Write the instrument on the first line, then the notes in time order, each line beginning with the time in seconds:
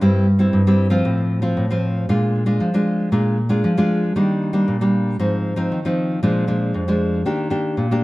nylon-string guitar
0.01 G2 G3 C4 E4
0.39 G3 C4 E4
0.53 G2
0.67 G3 C4 E4
0.90 F3 C4 F4
1.05 A2
1.42 F3 C4 F4
1.57 A2
1.71 F3 C4 F4
2.09 A#2 G#3 D4 F4
2.46 G#3 D4 F4
2.60 F3
2.74 G#3 D4 F4
3.12 A#2 G#3 D4 F4
3.49 G#3 D4 F4
3.64 F3
3.78 G#3 D4 F4
4.16 D#3 G3 A#3 D4
4.53 G3 A#3 D4
4.68 A#2
4.81 G3 A#3 D4
5.19 G#2 F3 C4 D#4
5.56 F3 C4 D#4
5.72 D#3
5.85 F3 C4 D#4
6.23 A#2 F3 G#3 D4
6.47 F3 G#3 D4
6.74 F2
6.88 F3 G#3 D4
7.25 D#3 A#3 D4 G4
7.50 A#3 D4 G4
7.77 A#2
7.91 A#3 D4 G4